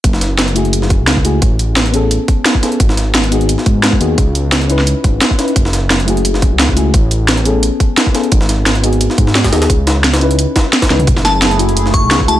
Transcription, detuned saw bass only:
X:1
M:4/4
L:1/16
Q:1/4=174
K:F#dor
V:1 name="Detuned saw bass" clef=bass
F,,,8- F,,,3 C,,4- C,, | A,,,8- A,,, z6 z | G,,,8- G,,, z G,,4 D,,2 | C,,8- C,, z G,,,2 z4 |
F,,,8- F,,,3 C,,4- C,, | A,,,8- A,,, z6 z | G,,,8- G,,, z G,,4 D,,2 | C,,8- C,, z4 z C,,2 |
F,,,8- F,,,3 C,,4- C,, |]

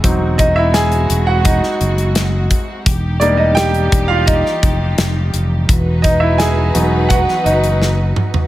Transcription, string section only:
X:1
M:4/4
L:1/8
Q:1/4=85
K:G#phr
V:1 name="String section"
[G,^B,F]8 | [E,D=G]8 | [DFB]8 |]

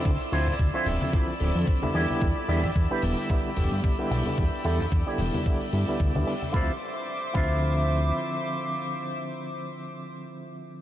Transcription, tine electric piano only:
X:1
M:4/4
L:1/16
Q:"Swing 16ths" 1/4=111
K:Ddor
V:1 name="Tine electric piano" clef=bass
z2 [D,F,CE] z2 [D,F,Ce]3 [D,F,CE] z [D,F,C]3 [D,G,B,E]2 [D,G,B,E] | z2 [D,G,B,E] z2 [D,G,B,E]3 [D,G,B,E] z [D,G,B,G]3 [D,G,B,E]2 [D,G,B,E] | z2 [D,G,B,E] z2 [D,G,B,E]3 [D,G,B,E] z [D,G,B,E] [D,G,B,E]2 [D,G,B,E] z2 | [D,F,Ce] z4 z [D,F,Ce]8- [D,F,Ce]2- |
[D,F,Ce]16 |]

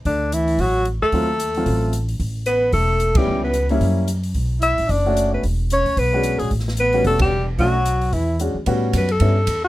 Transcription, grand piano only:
X:1
M:4/4
L:1/8
Q:"Swing" 1/4=223
K:Amix
V:1 name="Grand piano"
z8 | [F,A,^B,=F] z2 [^F,A,B,=F]3 z2 | z6 z [G,B,CE]- | [G,B,CE]2 z [G,_B,CE]3 z2 |
z4 z [A,CDF]3 | z4 z [^G,CDF]3 | z3 [G,B,CF]3 z2 | [A,CDF] z4 z [^G,CDF] z |
[G,B,CF]3 z [G,B,CE] z3 |]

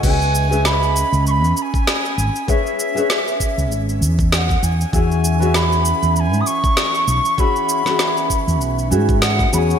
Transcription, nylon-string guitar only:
X:1
M:4/4
L:1/16
Q:"Swing 16ths" 1/4=98
K:C#m
V:1 name="Nylon-string guitar"
[CGBde]3 [CGBde]12- [CGBde] | [CGBce]3 [CGBce]8- [CGBce]3 z2 | [E,CFGe]3 [E,CFGe]12- [E,CFGe] | [E,CFGe]3 [E,CFGe]6- [E,CFGe] [E,CFGe]4 [E,CFGc]2 |]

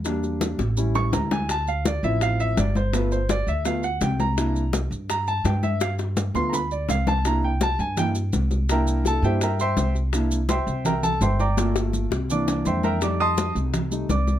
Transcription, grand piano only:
X:1
M:4/4
L:1/8
Q:1/4=167
K:Cmix
V:1 name="Grand piano"
z4 z ^c' b _a | a f d e f e d c | =B c d e f ^f g _b- | b2 z2 b a g e |
f z2 c' [b=b] d f a | b g a _a g z3 | [Begb]2 [Aa] [Gceg] [Begb] [cegc']2 z | z2 [cegc']2 [Begb] [Aa] [cegc'] [dgbd']- |
[dgbd'] z3 [dd']2 [cegc'] [Begb] | [dd'] [_eac'_e']2 z3 [dd']2 |]
V:2 name="Grand piano"
[G,B,D]3 z [G,^CE]4 | z3 [F,CE]3 z2 | [A,=B,F] z3 [A,B,F] z3 | [B,DE] z6 z |
z3 [A,=B,F] z4 | [B,DE] z3 [B,DE] z3 | [B,DE]3 [B,DE] z4 | [B,DE] z6 z |
[A,B,F]3 z [E,B,D]4 | [G,A,_E]4- [G,A,E] [G,A,E] z2 |]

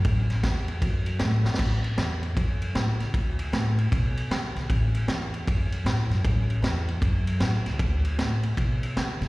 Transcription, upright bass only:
X:1
M:4/4
L:1/8
Q:"Swing" 1/4=155
K:A
V:1 name="Upright bass" clef=bass
A,,,2 E,,2 F,,2 A,, F,, | A,,,2 E,,2 F,,2 A,, C,, | D,,2 A,,2 B,,2 D, B,,, | A,,,2 E,,2 F,,2 A,, F,, |
A,,,2 E,,2 F,,2 A,, C,, | D,,2 A,,2 B,,2 D, B,, |]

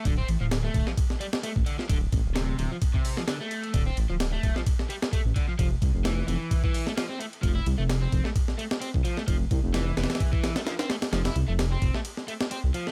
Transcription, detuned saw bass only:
X:1
M:4/4
L:1/16
Q:"Swing 16ths" 1/4=130
K:F
V:1 name="Detuned saw bass" clef=bass
D,,, z A,,, D,,,2 z D,,, z6 A,,, z2 | D,,, z A,,, D,,,2 z D,,, z8 z | D,,, z A,,, D,,,2 z D,,, z6 A,,, z2 | F,,, z C,, F,,,2 z F,,, z8 z |
F,,, z C,, F,,,2 z F,,, z6 C,, z2 | F,,, z C,, F,,,2 z F,,, z8 z | F,,, z C,, F,,,2 z F,,, z6 C,, z2 |]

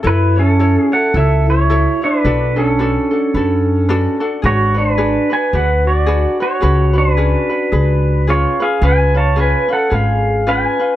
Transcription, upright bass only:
X:1
M:4/4
L:1/8
Q:"Swing" 1/4=109
K:F#m
V:1 name="Upright bass" clef=bass
F,,4 C,,4 | B,,,4 F,,4 | G,,,4 D,,4 | C,,4 C,,4 |
C,,4 G,,,4 |]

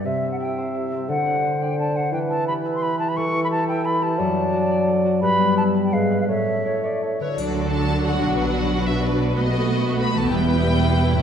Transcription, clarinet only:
X:1
M:3/4
L:1/8
Q:1/4=175
K:Em
V:1 name="Clarinet"
e6 | c6 | B6 | [K:D] A6 |
d6 | B4 B2 | c2 c d c B | z6 |
z6 | z6 | z6 |]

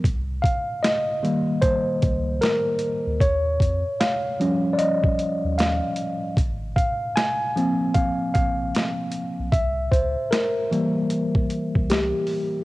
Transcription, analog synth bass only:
X:1
M:4/4
L:1/16
Q:"Swing 16ths" 1/4=76
K:Cphr
V:1 name="Analog synth bass" clef=bass
C,,2 z8 D,,2 z3 =D,, | E,,2 F,, z8 E,,2 z3 | A,,,2 z8 B,,,2 z3 =B,,, | C,,2 D,, z8 C,,2 z3 |]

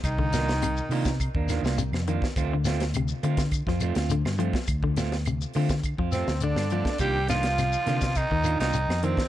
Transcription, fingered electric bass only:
X:1
M:4/4
L:1/16
Q:1/4=104
K:Cdor
V:1 name="Fingered electric bass" clef=bass
C,,6 C,3 E,,2 C,,2 F,,2 z | D,,6 D,3 F,,2 D,,2 G,,2 z | D,,6 D,3 F,,2 D,,2 G,,2 z | C,,6 C,3 E,,2 C,,2 F,,2 z |]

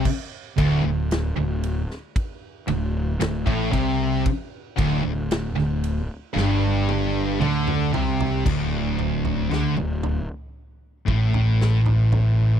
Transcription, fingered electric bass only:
X:1
M:4/4
L:1/16
Q:1/4=57
K:Cmix
V:1 name="Fingered electric bass" clef=bass
z2 D,,, D,,,2 D,,,2 z3 D,,,2 D,,, A,,, C,,2 | z2 D,,, D,,,2 D,,,2 z G,,,4 D,,2 C,,2 | D,,,4 D,, D,,,2 z3 A,,,6 |]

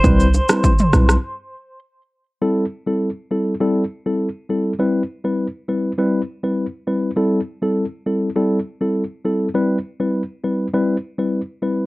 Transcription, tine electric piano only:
X:1
M:4/4
L:1/16
Q:1/4=101
K:C
V:1 name="Tine electric piano"
[G,CEB]2 z [G,CEB] z2 [G,CEB]2 z8 | [G,CEA]2 z [G,CEA] z2 [G,CEA]2 [G,CEA]2 z [G,CEA] z2 [G,CEA]2 | [G,CEB]2 z [G,CEB] z2 [G,CEB]2 [G,CEB]2 z [G,CEB] z2 [G,CEB]2 | [G,CEA]2 z [G,CEA] z2 [G,CEA]2 [G,CEA]2 z [G,CEA] z2 [G,CEA]2 |
[G,CEB]2 z [G,CEB] z2 [G,CEB]2 [G,CEB]2 z [G,CEB] z2 [G,CEB]2 |]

